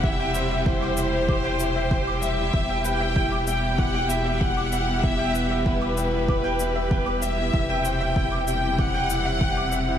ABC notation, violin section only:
X:1
M:4/4
L:1/8
Q:1/4=96
K:Em
V:1 name="Violin section"
e2 c4- c e- | e g2 g f e f2 | e2 B4- B e- | e g2 g f4 |]